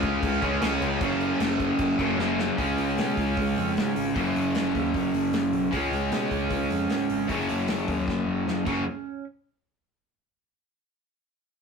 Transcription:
Already playing: C#3 G#3 C#4
0.03 C#2, kick, crash
0.22 C#2, kick, crash
0.42 C#2 C#3 G#3 C#4, kick, crash
0.61 C#2 C#3 G#3 C#4, snare, crash
0.82 C#2, crash
1.00 F#1 F#2 C#3 F#3, kick, crash
1.21 crash
1.40 F#1, snare, crash
1.60 kick, crash
1.79 F#1, kick, crash
1.98 F#1 F#2 C#3 F#3, kick, crash
2.18 F#1 F#2 C#3 F#3, snare
2.39 snare
2.57 C#2 C#3 G#3 C#4, kick, open hi-hat
2.78 C#2, open hi-hat
2.98 B2, snare, open hi-hat
3.17 C#2, kick, open hi-hat
3.37 C#2, kick, open hi-hat
3.57 F2, open hi-hat
3.77 G#2, snare, open hi-hat
3.96 G#1, open hi-hat
4.15 F#1 F#2 C#3 F#3, kick, open hi-hat
4.36 F#1, open hi-hat
4.55 F#1, snare, open hi-hat
4.75 D#2, kick, open hi-hat
4.94 F#1, kick, open hi-hat
5.14 F#1, open hi-hat
5.33 F#1, snare, open hi-hat
5.53 B1, open hi-hat
5.71 C#2 C#3 G#3 C#4, kick, open hi-hat
5.92 C#2, open hi-hat
6.11 B2, snare, open hi-hat
6.31 C#2, kick, open hi-hat
6.50 C#2, kick, open hi-hat
6.70 F2, open hi-hat
6.90 G#2, snare, open hi-hat
7.10 G#1, open hi-hat
7.28 F#1 F#2 C#3 F#3, kick, open hi-hat
7.49 F#1, open hi-hat
7.68 F#1, snare, open hi-hat
7.88 D#2, kick, open hi-hat
8.08 F#1, kick, snare
8.28 F#1
8.48 F#1, snare
8.65 F#1 F#2 C#3 F#3, kick, crash

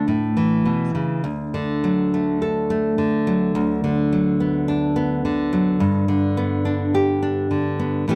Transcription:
Already playing: A3
0.08 A2
0.37 E3
0.65 B2
0.95 C#3
1.24 D2
1.54 D3
1.84 F#3
2.14 A3
2.42 A4
2.70 A3
2.98 D3
3.27 F#3
3.55 D2
3.84 D3
4.13 F#3
4.40 B3
4.68 D4
4.96 B3
5.25 D3
5.53 F#3
5.80 G2
6.08 D3
6.37 B3
6.65 D4
6.95 G4
7.22 D4
7.51 D3
7.80 B3
8.08 A2 E3 A3 C#4 G4

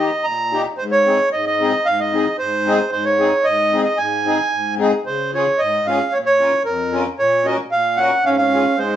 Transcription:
Already playing: D#3 D#5
0.00 D#4 G4
0.24 A#2 A#5
0.52 A#3 D#4 G4
0.78 G#2 C5
0.91 C#5
1.06 C4 D#4 G#4
1.32 G#2 D#5
1.47 D#5
1.61 C4 D#4 G#4
1.86 G#2 F5
2.00 D#5
2.12 C4 D#4 G#4
2.39 G#2 C5
2.66 C4 D#4 G#4
2.92 G#2 C5
3.05 C#5
3.19 C4 D#4 G#4
3.44 G#2 D#5
3.73 C4 D#4 G#4
3.85 D#5
3.98 G#2 G#5
4.25 C4 D#4 G#4
4.52 G#2
4.78 C4 D#4 G#4
5.06 C#3 C5
5.34 C#4 F4 G#4 C#5
5.58 G#2 D#5
5.87 C#4 F4 G#4 F5
6.12 A#2 C#5
6.26 C#5
6.40 C#4 F4 A#4
6.65 F2 A#4
6.92 C#4 F4 A#4
7.19 A#2 C#5
7.45 C#4 F#4 A#4 D#5
7.71 A#2 F5
7.97 C#4 F#4 A#4 F#5
8.25 G#2 C#4 F5
8.37 C#4 F5
8.53 C#4 F4 G#4
8.78 G#2 G#3 C5

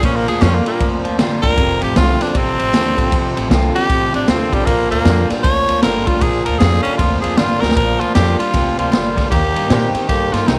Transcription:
0.03 A#1 A#2 F3 C#4, kick, ride
0.16 A#3
0.27 D2 A#2 F3 G#4, ride
0.41 F2 A#2 D3 G3 A#3 C#4 D4 F4, snare, ride
0.55 A#3
0.66 A#2 G3 A#3 D4 F4, muted upright bass stroke, ride
0.80 D2 F2 A#2 F3, kick, ride
1.04 D2 A#2 F3, ride
1.18 G1 A#2 D3 G3 A#3 D4 F4, snare, ride
1.42 D2 A#2 G3 D4 F4 A#4, kick, ride
1.56 F1 F2 C3, kick, ride
1.80 A1 F2 C3 G4, ride
1.95 C2 F2 D3 F3 A3 C4 F4, snare, ride
2.20 F2 D3 C4 D4 F4, muted upright bass stroke, snare, ride
2.34 A1 F2 C3 C4, kick, ride
2.58 A1 F2 C3, ride
2.73 D#2 F2 D3 F3 A3 C4 F4, snare, ride
2.97 A1 F2 D3 C4 F4, kick, ride
3.10 F1 F2 C3, kick, ride
3.36 A1 F2 C3, ride
3.50 C2 F2 D3 F3 A3 C4 F4, snare, ride
3.74 F2 D3 C4 F4 G4, ride
3.88 A1 F2 C3, kick, ride
4.13 A1 F2 C3 D4, ride
4.27 D#2 F2 D3 F3 A3 C4 F4, snare, ride
4.52 A1 F2 D3 G3 C4 F4, kick, ride
4.65 A#1 A#2 F3 A#3, kick, ride
4.91 D2 A#2 F3 A#3, ride
5.05 F2 A#2 D3 G3 A#3 D4 F4, snare, ride
5.30 A#2 G3 D4 F4, muted upright bass stroke, snare, ride
5.43 D2 F2 A#2 F3 C#5, kick, ride
5.68 D2 A#2 F3, ride
5.82 G1 A#2 D3 G3 A#3 D4 F4 A#4, snare, ride
6.07 D2 A#2 G3 D4 F4, kick, ride
6.21 A#1 A#2 F3 G#4, kick, ride
6.45 D2 A#2 F3 A#4, ride
6.58 F2 A#2 D3 G3 A#3 D4 G#4, snare, ride
6.63 F4
6.83 A#2 G3 C#4, muted upright bass stroke, ride
6.97 D2 F2 A#2 F3 F4, kick, ride
7.21 D2 A#2 F3 G#4, ride
7.37 G1 A#2 D3 G3 A#3 D4 F4, snare, ride
7.60 D2 A#2 G3 D4 F4 A#4, snare
7.71 snare
7.76 A#1 A#2 F3 A#4, kick, ride
8.00 D2 A#2 F3 F4, ride
8.15 F2 A#2 D3 G3 A#3 D4 F4 G4, snare, ride
8.39 A#2 G3 D4 F4, muted upright bass stroke, ride
8.53 D2 A#2 C3 F3, kick, snare, ride
8.78 D2 A#2 F3 F4, ride
8.91 G1 A#2 D3 G3, snare, ride
9.16 D2 A#2 G3, kick, snare, ride
9.30 D#2 D#3 A#3 G4, kick, snare, ride
9.55 G2 D#3 A#3, ride
9.70 A#2 D#3 G3 A#3 C4 D#4 G4, snare, ride
9.94 D#3 C4 D#4 G4, muted upright bass stroke, ride
10.08 G2 D3 D#3 A#3 G4, kick, snare, ride
10.32 G2 D#3 A#3 F4, snare, ride
10.47 C2 C3 D#3 C4 D#4, snare, ride

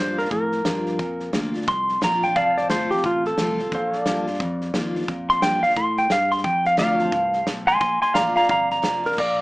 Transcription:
Already playing: G2 A#2 F3 A#3 D4 F4 C5 F5 A#5
0.18 D4 F4 A#4, snare
0.25 snare
0.31 F2 A2 A#4, kick, snare
0.52 snare
0.65 G2 F3 A#3 D4 F4, snare, hi-hat pedal
0.86 snare
0.99 F2 A#2, kick, snare
1.20 snare
1.33 D2 F3 A#3 D4 F4, snare, hi-hat pedal
1.54 D4 F4, snare
1.61 snare
1.68 C2 F2 C6, kick, snare
1.89 snare
2.01 A#1 F3 A#3 D4 F4 A#5, snare, hi-hat pedal
2.23 D4 F4 G5, snare
2.36 F1 F2 D5 F5 A5, kick, snare
2.57 D5, snare
2.62 C5
2.70 G1 F3 A3 C4 F4 C5, snare, hi-hat pedal
2.90 C4 F4 G4, muted fingered electric bass stroke, snare
2.97 snare
3.04 A1 C3 F4, kick, snare
3.25 A4, snare
3.38 C2 F3 A3 C4 F4, snare, hi-hat pedal
3.58 C4 F4, snare
3.72 A#1 A#2 C5 F5, kick, snare
3.93 snare
4.00 D5
4.06 G2 F3 A#3 D4 F4, snare, hi-hat pedal
4.27 D4 F4, snare
4.33 snare
4.40 F2, kick, snare
4.61 snare
4.74 D#2 F3 A#3 D4 F4, snare, hi-hat pedal
4.95 D4 F4, snare
5.02 snare
5.08 F2 A#2, kick, snare
5.29 C6, snare
5.42 G2 F3 A#3 D4 F4 G5, snare, hi-hat pedal
5.63 D4 F4 F5, muted fingered electric bass stroke, snare
5.70 snare
5.76 A2 C6, kick, snare
5.97 G5, snare
6.10 G2 F5, snare, hi-hat pedal
6.31 C6, snare
6.37 snare
6.44 F2 G5, kick, snare
6.65 F5, snare
6.77 D2 F3 A3 C4 F4 D5 F5, snare, hi-hat pedal
6.81 F5 A#5
6.99 C4 F4 A5, snare
7.04 C5
7.12 C2 G2, kick, snare
7.33 snare
7.47 B1 A2, snare, hi-hat pedal
7.67 G#5 C6, snare
7.80 A#1 A#2 G#5 C6, kick, snare
8.02 G#5 C6, muted fingered electric bass stroke, snare
8.14 A1 F3 A#3 D4 F4 D5 F5 A#5, snare, hi-hat pedal
8.36 D4 F4 F5 A#5, muted fingered electric bass stroke, snare
8.42 snare
8.49 G1 F2 F5 A#5, kick, snare
8.70 A#5, snare
8.82 F1 F3 A#3 D4 F4, snare, hi-hat pedal
9.03 D4 F4 A#4, snare
9.12 snare
9.17 A#1 A#2 D5 F5 A#5, kick, snare, crash

